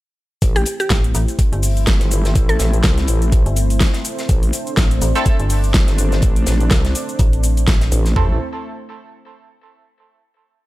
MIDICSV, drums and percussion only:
0, 0, Header, 1, 2, 480
1, 0, Start_track
1, 0, Key_signature, 0, "minor"
1, 0, Tempo, 483871
1, 417, Time_signature, 4, 2, 24, 8
1, 10580, End_track
2, 0, Start_track
2, 0, Title_t, "Drums"
2, 417, Note_on_c, 9, 36, 120
2, 417, Note_on_c, 9, 42, 79
2, 417, Note_on_c, 9, 82, 45
2, 419, Note_off_c, 9, 42, 0
2, 419, Note_on_c, 9, 42, 78
2, 516, Note_off_c, 9, 36, 0
2, 516, Note_off_c, 9, 82, 0
2, 518, Note_off_c, 9, 42, 0
2, 555, Note_on_c, 9, 46, 59
2, 555, Note_on_c, 9, 82, 22
2, 650, Note_on_c, 9, 42, 75
2, 654, Note_off_c, 9, 46, 0
2, 654, Note_off_c, 9, 82, 0
2, 657, Note_on_c, 9, 46, 107
2, 657, Note_on_c, 9, 82, 77
2, 750, Note_off_c, 9, 42, 0
2, 756, Note_off_c, 9, 46, 0
2, 756, Note_off_c, 9, 82, 0
2, 794, Note_on_c, 9, 42, 38
2, 795, Note_on_c, 9, 82, 33
2, 891, Note_off_c, 9, 42, 0
2, 891, Note_on_c, 9, 42, 86
2, 894, Note_off_c, 9, 82, 0
2, 896, Note_on_c, 9, 36, 114
2, 896, Note_on_c, 9, 38, 122
2, 897, Note_off_c, 9, 38, 0
2, 897, Note_on_c, 9, 38, 107
2, 898, Note_off_c, 9, 42, 0
2, 898, Note_on_c, 9, 42, 81
2, 898, Note_on_c, 9, 82, 46
2, 996, Note_off_c, 9, 36, 0
2, 996, Note_off_c, 9, 38, 0
2, 997, Note_off_c, 9, 42, 0
2, 997, Note_off_c, 9, 82, 0
2, 1035, Note_on_c, 9, 42, 55
2, 1035, Note_on_c, 9, 82, 22
2, 1134, Note_off_c, 9, 42, 0
2, 1134, Note_off_c, 9, 82, 0
2, 1138, Note_on_c, 9, 46, 108
2, 1138, Note_on_c, 9, 82, 81
2, 1142, Note_on_c, 9, 42, 72
2, 1237, Note_off_c, 9, 46, 0
2, 1237, Note_off_c, 9, 82, 0
2, 1241, Note_off_c, 9, 42, 0
2, 1274, Note_on_c, 9, 42, 38
2, 1274, Note_on_c, 9, 82, 34
2, 1373, Note_off_c, 9, 42, 0
2, 1373, Note_off_c, 9, 82, 0
2, 1376, Note_on_c, 9, 36, 119
2, 1376, Note_on_c, 9, 42, 87
2, 1378, Note_off_c, 9, 42, 0
2, 1378, Note_on_c, 9, 42, 85
2, 1378, Note_on_c, 9, 82, 47
2, 1475, Note_off_c, 9, 36, 0
2, 1477, Note_off_c, 9, 42, 0
2, 1477, Note_off_c, 9, 82, 0
2, 1515, Note_on_c, 9, 42, 51
2, 1515, Note_on_c, 9, 82, 22
2, 1614, Note_off_c, 9, 42, 0
2, 1614, Note_off_c, 9, 82, 0
2, 1615, Note_on_c, 9, 46, 72
2, 1617, Note_off_c, 9, 46, 0
2, 1617, Note_on_c, 9, 46, 108
2, 1617, Note_on_c, 9, 82, 82
2, 1716, Note_off_c, 9, 46, 0
2, 1716, Note_off_c, 9, 82, 0
2, 1754, Note_on_c, 9, 42, 40
2, 1754, Note_on_c, 9, 82, 33
2, 1853, Note_off_c, 9, 42, 0
2, 1853, Note_off_c, 9, 82, 0
2, 1853, Note_on_c, 9, 42, 88
2, 1855, Note_on_c, 9, 38, 127
2, 1856, Note_off_c, 9, 38, 0
2, 1856, Note_on_c, 9, 36, 116
2, 1856, Note_on_c, 9, 38, 124
2, 1858, Note_off_c, 9, 42, 0
2, 1858, Note_on_c, 9, 42, 82
2, 1858, Note_on_c, 9, 82, 45
2, 1956, Note_off_c, 9, 36, 0
2, 1956, Note_off_c, 9, 38, 0
2, 1957, Note_off_c, 9, 42, 0
2, 1957, Note_off_c, 9, 82, 0
2, 1982, Note_on_c, 9, 38, 45
2, 1994, Note_on_c, 9, 42, 55
2, 1994, Note_on_c, 9, 82, 22
2, 2082, Note_off_c, 9, 38, 0
2, 2093, Note_off_c, 9, 42, 0
2, 2093, Note_off_c, 9, 82, 0
2, 2095, Note_on_c, 9, 42, 66
2, 2097, Note_on_c, 9, 46, 110
2, 2097, Note_on_c, 9, 82, 82
2, 2194, Note_off_c, 9, 42, 0
2, 2197, Note_off_c, 9, 46, 0
2, 2197, Note_off_c, 9, 82, 0
2, 2233, Note_on_c, 9, 38, 61
2, 2234, Note_on_c, 9, 42, 39
2, 2234, Note_on_c, 9, 82, 34
2, 2333, Note_off_c, 9, 38, 0
2, 2333, Note_off_c, 9, 42, 0
2, 2333, Note_off_c, 9, 82, 0
2, 2336, Note_on_c, 9, 36, 127
2, 2336, Note_on_c, 9, 42, 82
2, 2336, Note_on_c, 9, 82, 43
2, 2435, Note_off_c, 9, 36, 0
2, 2436, Note_off_c, 9, 42, 0
2, 2436, Note_off_c, 9, 82, 0
2, 2473, Note_on_c, 9, 42, 54
2, 2473, Note_on_c, 9, 82, 22
2, 2570, Note_off_c, 9, 42, 0
2, 2570, Note_on_c, 9, 42, 67
2, 2572, Note_off_c, 9, 82, 0
2, 2574, Note_on_c, 9, 38, 57
2, 2576, Note_on_c, 9, 46, 109
2, 2576, Note_on_c, 9, 82, 76
2, 2670, Note_off_c, 9, 42, 0
2, 2673, Note_off_c, 9, 38, 0
2, 2676, Note_off_c, 9, 46, 0
2, 2676, Note_off_c, 9, 82, 0
2, 2713, Note_on_c, 9, 42, 36
2, 2713, Note_on_c, 9, 82, 32
2, 2810, Note_off_c, 9, 42, 0
2, 2810, Note_on_c, 9, 42, 86
2, 2812, Note_off_c, 9, 82, 0
2, 2813, Note_on_c, 9, 38, 111
2, 2815, Note_off_c, 9, 38, 0
2, 2815, Note_on_c, 9, 38, 121
2, 2816, Note_off_c, 9, 42, 0
2, 2816, Note_on_c, 9, 36, 123
2, 2816, Note_on_c, 9, 42, 77
2, 2816, Note_on_c, 9, 82, 43
2, 2914, Note_off_c, 9, 38, 0
2, 2915, Note_off_c, 9, 42, 0
2, 2915, Note_off_c, 9, 82, 0
2, 2916, Note_off_c, 9, 36, 0
2, 2953, Note_on_c, 9, 42, 54
2, 2953, Note_on_c, 9, 82, 22
2, 2957, Note_on_c, 9, 38, 45
2, 3050, Note_off_c, 9, 42, 0
2, 3050, Note_on_c, 9, 42, 74
2, 3052, Note_off_c, 9, 82, 0
2, 3056, Note_off_c, 9, 38, 0
2, 3056, Note_on_c, 9, 46, 111
2, 3056, Note_on_c, 9, 82, 80
2, 3149, Note_off_c, 9, 42, 0
2, 3156, Note_off_c, 9, 46, 0
2, 3156, Note_off_c, 9, 82, 0
2, 3193, Note_on_c, 9, 42, 38
2, 3193, Note_on_c, 9, 82, 33
2, 3292, Note_off_c, 9, 42, 0
2, 3292, Note_off_c, 9, 82, 0
2, 3296, Note_on_c, 9, 42, 89
2, 3297, Note_off_c, 9, 42, 0
2, 3297, Note_on_c, 9, 36, 122
2, 3297, Note_on_c, 9, 42, 83
2, 3297, Note_on_c, 9, 82, 43
2, 3396, Note_off_c, 9, 36, 0
2, 3396, Note_off_c, 9, 42, 0
2, 3396, Note_off_c, 9, 82, 0
2, 3434, Note_on_c, 9, 42, 53
2, 3434, Note_on_c, 9, 82, 21
2, 3533, Note_off_c, 9, 42, 0
2, 3533, Note_off_c, 9, 82, 0
2, 3533, Note_on_c, 9, 42, 73
2, 3537, Note_on_c, 9, 46, 113
2, 3537, Note_on_c, 9, 82, 78
2, 3633, Note_off_c, 9, 42, 0
2, 3636, Note_off_c, 9, 46, 0
2, 3636, Note_off_c, 9, 82, 0
2, 3672, Note_on_c, 9, 42, 45
2, 3673, Note_on_c, 9, 46, 66
2, 3673, Note_on_c, 9, 82, 32
2, 3771, Note_off_c, 9, 42, 0
2, 3772, Note_off_c, 9, 46, 0
2, 3772, Note_off_c, 9, 82, 0
2, 3775, Note_on_c, 9, 38, 124
2, 3776, Note_on_c, 9, 42, 82
2, 3776, Note_on_c, 9, 82, 43
2, 3777, Note_on_c, 9, 36, 125
2, 3778, Note_off_c, 9, 42, 0
2, 3778, Note_on_c, 9, 42, 90
2, 3779, Note_off_c, 9, 38, 0
2, 3779, Note_on_c, 9, 38, 119
2, 3875, Note_off_c, 9, 82, 0
2, 3876, Note_off_c, 9, 36, 0
2, 3877, Note_off_c, 9, 42, 0
2, 3878, Note_off_c, 9, 38, 0
2, 3906, Note_on_c, 9, 38, 61
2, 3913, Note_on_c, 9, 42, 54
2, 3913, Note_on_c, 9, 82, 21
2, 4006, Note_off_c, 9, 38, 0
2, 4012, Note_off_c, 9, 42, 0
2, 4012, Note_off_c, 9, 82, 0
2, 4016, Note_on_c, 9, 46, 115
2, 4016, Note_on_c, 9, 82, 79
2, 4022, Note_on_c, 9, 42, 75
2, 4115, Note_off_c, 9, 46, 0
2, 4115, Note_off_c, 9, 82, 0
2, 4121, Note_off_c, 9, 42, 0
2, 4153, Note_on_c, 9, 42, 36
2, 4153, Note_on_c, 9, 82, 33
2, 4154, Note_on_c, 9, 38, 45
2, 4252, Note_off_c, 9, 42, 0
2, 4252, Note_off_c, 9, 82, 0
2, 4253, Note_off_c, 9, 38, 0
2, 4255, Note_on_c, 9, 42, 91
2, 4256, Note_off_c, 9, 42, 0
2, 4256, Note_on_c, 9, 42, 79
2, 4256, Note_on_c, 9, 82, 42
2, 4257, Note_on_c, 9, 36, 125
2, 4355, Note_off_c, 9, 42, 0
2, 4355, Note_off_c, 9, 82, 0
2, 4356, Note_off_c, 9, 36, 0
2, 4393, Note_on_c, 9, 46, 67
2, 4393, Note_on_c, 9, 82, 21
2, 4492, Note_off_c, 9, 46, 0
2, 4492, Note_off_c, 9, 82, 0
2, 4496, Note_on_c, 9, 46, 113
2, 4496, Note_on_c, 9, 82, 74
2, 4505, Note_on_c, 9, 42, 74
2, 4595, Note_off_c, 9, 46, 0
2, 4595, Note_off_c, 9, 82, 0
2, 4604, Note_off_c, 9, 42, 0
2, 4633, Note_on_c, 9, 42, 36
2, 4633, Note_on_c, 9, 82, 31
2, 4732, Note_off_c, 9, 42, 0
2, 4732, Note_off_c, 9, 82, 0
2, 4735, Note_on_c, 9, 38, 122
2, 4736, Note_on_c, 9, 42, 77
2, 4736, Note_on_c, 9, 82, 44
2, 4737, Note_on_c, 9, 36, 123
2, 4738, Note_off_c, 9, 38, 0
2, 4738, Note_on_c, 9, 38, 112
2, 4739, Note_off_c, 9, 42, 0
2, 4739, Note_on_c, 9, 42, 86
2, 4835, Note_off_c, 9, 82, 0
2, 4836, Note_off_c, 9, 36, 0
2, 4837, Note_off_c, 9, 38, 0
2, 4838, Note_off_c, 9, 42, 0
2, 4873, Note_on_c, 9, 42, 53
2, 4873, Note_on_c, 9, 82, 22
2, 4972, Note_off_c, 9, 42, 0
2, 4972, Note_off_c, 9, 82, 0
2, 4976, Note_on_c, 9, 46, 110
2, 4976, Note_on_c, 9, 82, 77
2, 4990, Note_on_c, 9, 42, 74
2, 5075, Note_off_c, 9, 46, 0
2, 5075, Note_off_c, 9, 82, 0
2, 5090, Note_off_c, 9, 42, 0
2, 5112, Note_on_c, 9, 42, 39
2, 5112, Note_on_c, 9, 82, 33
2, 5212, Note_off_c, 9, 42, 0
2, 5212, Note_off_c, 9, 82, 0
2, 5212, Note_on_c, 9, 42, 86
2, 5217, Note_off_c, 9, 42, 0
2, 5217, Note_on_c, 9, 36, 123
2, 5217, Note_on_c, 9, 42, 80
2, 5217, Note_on_c, 9, 82, 43
2, 5316, Note_off_c, 9, 42, 0
2, 5316, Note_off_c, 9, 82, 0
2, 5317, Note_off_c, 9, 36, 0
2, 5352, Note_on_c, 9, 42, 50
2, 5352, Note_on_c, 9, 82, 20
2, 5452, Note_off_c, 9, 42, 0
2, 5452, Note_off_c, 9, 82, 0
2, 5456, Note_on_c, 9, 46, 114
2, 5456, Note_on_c, 9, 82, 78
2, 5458, Note_off_c, 9, 46, 0
2, 5458, Note_on_c, 9, 46, 76
2, 5555, Note_off_c, 9, 82, 0
2, 5557, Note_off_c, 9, 46, 0
2, 5593, Note_on_c, 9, 42, 38
2, 5593, Note_on_c, 9, 82, 32
2, 5692, Note_off_c, 9, 42, 0
2, 5692, Note_off_c, 9, 82, 0
2, 5695, Note_on_c, 9, 38, 112
2, 5696, Note_off_c, 9, 38, 0
2, 5696, Note_on_c, 9, 38, 125
2, 5697, Note_on_c, 9, 36, 127
2, 5697, Note_on_c, 9, 42, 79
2, 5697, Note_on_c, 9, 82, 44
2, 5700, Note_off_c, 9, 42, 0
2, 5700, Note_on_c, 9, 42, 88
2, 5795, Note_off_c, 9, 38, 0
2, 5796, Note_off_c, 9, 36, 0
2, 5796, Note_off_c, 9, 82, 0
2, 5799, Note_off_c, 9, 42, 0
2, 5826, Note_on_c, 9, 38, 43
2, 5833, Note_on_c, 9, 42, 52
2, 5833, Note_on_c, 9, 82, 21
2, 5926, Note_off_c, 9, 38, 0
2, 5932, Note_off_c, 9, 42, 0
2, 5932, Note_off_c, 9, 82, 0
2, 5935, Note_on_c, 9, 42, 72
2, 5936, Note_on_c, 9, 46, 118
2, 5936, Note_on_c, 9, 82, 79
2, 6034, Note_off_c, 9, 42, 0
2, 6036, Note_off_c, 9, 46, 0
2, 6036, Note_off_c, 9, 82, 0
2, 6073, Note_on_c, 9, 42, 36
2, 6073, Note_on_c, 9, 82, 31
2, 6077, Note_on_c, 9, 38, 51
2, 6170, Note_off_c, 9, 42, 0
2, 6170, Note_on_c, 9, 42, 81
2, 6172, Note_off_c, 9, 82, 0
2, 6176, Note_off_c, 9, 38, 0
2, 6176, Note_off_c, 9, 42, 0
2, 6176, Note_on_c, 9, 42, 74
2, 6176, Note_on_c, 9, 82, 44
2, 6177, Note_on_c, 9, 36, 126
2, 6275, Note_off_c, 9, 42, 0
2, 6275, Note_off_c, 9, 82, 0
2, 6276, Note_off_c, 9, 36, 0
2, 6312, Note_on_c, 9, 42, 51
2, 6312, Note_on_c, 9, 82, 22
2, 6412, Note_off_c, 9, 42, 0
2, 6412, Note_off_c, 9, 82, 0
2, 6412, Note_on_c, 9, 42, 71
2, 6413, Note_on_c, 9, 38, 63
2, 6415, Note_on_c, 9, 46, 106
2, 6415, Note_on_c, 9, 82, 78
2, 6511, Note_off_c, 9, 42, 0
2, 6513, Note_off_c, 9, 38, 0
2, 6515, Note_off_c, 9, 46, 0
2, 6515, Note_off_c, 9, 82, 0
2, 6552, Note_on_c, 9, 42, 35
2, 6552, Note_on_c, 9, 82, 32
2, 6651, Note_off_c, 9, 42, 0
2, 6651, Note_off_c, 9, 82, 0
2, 6654, Note_on_c, 9, 38, 117
2, 6655, Note_off_c, 9, 38, 0
2, 6655, Note_on_c, 9, 38, 124
2, 6656, Note_on_c, 9, 42, 75
2, 6656, Note_on_c, 9, 82, 45
2, 6657, Note_on_c, 9, 36, 127
2, 6662, Note_off_c, 9, 42, 0
2, 6662, Note_on_c, 9, 42, 89
2, 6755, Note_off_c, 9, 38, 0
2, 6755, Note_off_c, 9, 82, 0
2, 6756, Note_off_c, 9, 36, 0
2, 6761, Note_off_c, 9, 42, 0
2, 6792, Note_on_c, 9, 42, 50
2, 6792, Note_on_c, 9, 82, 23
2, 6798, Note_on_c, 9, 38, 48
2, 6892, Note_off_c, 9, 42, 0
2, 6892, Note_off_c, 9, 82, 0
2, 6896, Note_on_c, 9, 46, 116
2, 6896, Note_on_c, 9, 82, 81
2, 6897, Note_off_c, 9, 38, 0
2, 6901, Note_on_c, 9, 42, 71
2, 6996, Note_off_c, 9, 46, 0
2, 6996, Note_off_c, 9, 82, 0
2, 7000, Note_off_c, 9, 42, 0
2, 7033, Note_on_c, 9, 42, 37
2, 7033, Note_on_c, 9, 82, 34
2, 7131, Note_off_c, 9, 42, 0
2, 7131, Note_on_c, 9, 42, 88
2, 7132, Note_off_c, 9, 82, 0
2, 7136, Note_off_c, 9, 42, 0
2, 7136, Note_on_c, 9, 36, 125
2, 7136, Note_on_c, 9, 42, 76
2, 7136, Note_on_c, 9, 82, 47
2, 7235, Note_off_c, 9, 42, 0
2, 7235, Note_off_c, 9, 82, 0
2, 7236, Note_off_c, 9, 36, 0
2, 7273, Note_on_c, 9, 42, 49
2, 7273, Note_on_c, 9, 82, 22
2, 7373, Note_off_c, 9, 42, 0
2, 7373, Note_off_c, 9, 82, 0
2, 7376, Note_on_c, 9, 46, 115
2, 7376, Note_on_c, 9, 82, 79
2, 7384, Note_on_c, 9, 42, 70
2, 7475, Note_off_c, 9, 46, 0
2, 7475, Note_off_c, 9, 82, 0
2, 7483, Note_off_c, 9, 42, 0
2, 7513, Note_on_c, 9, 46, 67
2, 7513, Note_on_c, 9, 82, 35
2, 7514, Note_on_c, 9, 42, 46
2, 7612, Note_off_c, 9, 46, 0
2, 7612, Note_off_c, 9, 82, 0
2, 7613, Note_off_c, 9, 42, 0
2, 7614, Note_on_c, 9, 38, 121
2, 7616, Note_on_c, 9, 36, 124
2, 7616, Note_on_c, 9, 42, 91
2, 7616, Note_on_c, 9, 82, 42
2, 7618, Note_off_c, 9, 38, 0
2, 7618, Note_on_c, 9, 38, 121
2, 7715, Note_off_c, 9, 36, 0
2, 7715, Note_off_c, 9, 42, 0
2, 7715, Note_off_c, 9, 82, 0
2, 7717, Note_off_c, 9, 38, 0
2, 7749, Note_on_c, 9, 38, 55
2, 7752, Note_on_c, 9, 42, 52
2, 7752, Note_on_c, 9, 82, 22
2, 7848, Note_off_c, 9, 38, 0
2, 7851, Note_off_c, 9, 42, 0
2, 7851, Note_off_c, 9, 82, 0
2, 7856, Note_on_c, 9, 42, 70
2, 7856, Note_on_c, 9, 46, 118
2, 7856, Note_on_c, 9, 82, 81
2, 7955, Note_off_c, 9, 42, 0
2, 7955, Note_off_c, 9, 46, 0
2, 7955, Note_off_c, 9, 82, 0
2, 7990, Note_on_c, 9, 38, 41
2, 7993, Note_on_c, 9, 42, 36
2, 7993, Note_on_c, 9, 82, 33
2, 8089, Note_off_c, 9, 38, 0
2, 8092, Note_off_c, 9, 42, 0
2, 8092, Note_off_c, 9, 82, 0
2, 8096, Note_on_c, 9, 36, 108
2, 8096, Note_on_c, 9, 43, 109
2, 8195, Note_off_c, 9, 36, 0
2, 8196, Note_off_c, 9, 43, 0
2, 10580, End_track
0, 0, End_of_file